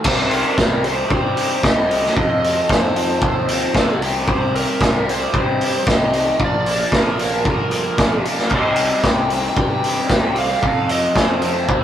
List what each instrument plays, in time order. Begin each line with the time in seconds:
0.04 picked electric bass C2, overdriven electric guitar G3 C4 D#4 G4, kick, crash
0.08 lead electric guitar C5
0.30 picked electric bass C2, lead electric guitar A#4, open hi-hat
0.58 picked electric bass C2, overdriven electric guitar G3 C4 D#4 G4, kick, snare
0.84 overdriven electric guitar G3 C4 D#4 G4, lead electric guitar C5, open hi-hat
1.09 picked electric bass G2, overdriven electric guitar G3 C4 D#4 G4, lead electric guitar C5, kick
1.37 open hi-hat
1.63 picked electric bass C2, overdriven electric guitar G3 C4 D#4 G4, lead electric guitar D#5, kick, snare
1.91 overdriven electric guitar G3 C4 D#4 G4, open hi-hat
2.06 snare
2.16 picked electric bass F2, overdriven electric guitar F3 C4 D#4 A4, lead electric guitar D#5, kick
2.44 open hi-hat
2.69 picked electric bass F2, overdriven electric guitar F3 C4 D#4 A4, lead electric guitar C5, kick, snare
2.95 overdriven electric guitar F3 C4 D#4 A4, open hi-hat
3.21 picked electric bass D#2, overdriven electric guitar F3 C4 D#4 A4, lead electric guitar C5, kick
3.48 open hi-hat
3.74 picked electric bass D2, overdriven electric guitar F3 C4 D#4 A4, kick, snare
3.99 picked electric bass C2, overdriven electric guitar G3 C4 D#4 G4, open hi-hat
4.28 overdriven electric guitar G3 C4 D#4 G4, lead electric guitar C5, kick
4.51 picked electric bass C2
4.55 lead electric guitar A#4, open hi-hat
4.80 picked electric bass C2, overdriven electric guitar G3 C4 D#4 G4, kick, snare
5.07 overdriven electric guitar G3 C4 D#4 G4, lead electric guitar C5, open hi-hat
5.33 picked electric bass G2, overdriven electric guitar G3 C4 D#4 G4, lead electric guitar C5, kick
5.61 open hi-hat
5.87 picked electric bass C2, overdriven electric guitar G3 C4 D#4 G4, kick, snare
5.92 lead electric guitar D#5
6.13 overdriven electric guitar G3 C4 D#4 G4, open hi-hat
6.39 picked electric bass A#1, overdriven electric guitar F3 A#3 D4 A#4, kick
6.45 lead electric guitar D5
6.66 open hi-hat
6.92 picked electric bass A#1, overdriven electric guitar F3 A#3 D4 A#4, kick, snare
6.98 lead electric guitar A#4
7.19 overdriven electric guitar F3 A#3 D4 A#4, open hi-hat
7.44 picked electric bass G1, overdriven electric guitar F3 A#3, kick
7.48 overdriven electric guitar D4 A#4, lead electric guitar A#4
7.71 open hi-hat
7.97 picked electric bass A#1, overdriven electric guitar F3 A#3 D4 A#4, kick, snare
8.25 overdriven electric guitar F3 A#3 D4 A#4, open hi-hat
8.38 snare
8.49 picked electric bass C2, overdriven electric guitar G3, kick, crash
8.54 overdriven electric guitar C4 D#4 G4, lead electric guitar D#5
8.76 picked electric bass C2, open hi-hat
9.03 picked electric bass C2, overdriven electric guitar G3 C4 D#4 G4, lead electric guitar G5, kick, snare
9.30 overdriven electric guitar G3 C4 D#4 G4, open hi-hat
9.56 picked electric bass G2, overdriven electric guitar G3 C4 D#4 G4, lead electric guitar G5, kick
9.84 open hi-hat
10.09 picked electric bass C2, overdriven electric guitar G3 C4 D#4 G4, kick, snare
10.36 overdriven electric guitar G3 C4 D#4 G4, lead electric guitar F5, open hi-hat
10.62 picked electric bass F2, overdriven electric guitar F3 C4 D#4 A4, kick
10.89 lead electric guitar D#5, open hi-hat
11.15 picked electric bass F2, overdriven electric guitar F3 C4 D#4 A4, lead electric guitar C5, kick, snare
11.42 overdriven electric guitar F3 C4 D#4 A4, open hi-hat
11.68 picked electric bass D#2, overdriven electric guitar F3 C4 D#4, kick
11.72 overdriven electric guitar A4